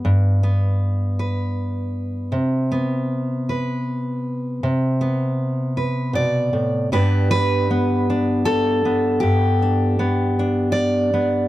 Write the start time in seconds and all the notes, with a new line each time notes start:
Already playing: B3 B4
0.05 G2
0.43 B3
1.19 B4
2.32 C3
2.72 B3
3.49 B4
4.63 C3
5.01 B3
5.77 B4
6.13 B2 D5
6.53 A2
6.92 G2 B3 D4 G4 B4
7.31 B4
7.71 B3
8.10 D4
8.45 A4
8.85 B3
9.20 G2 G4
9.62 D4
9.99 B3
10.39 D4
10.72 D5
11.14 B3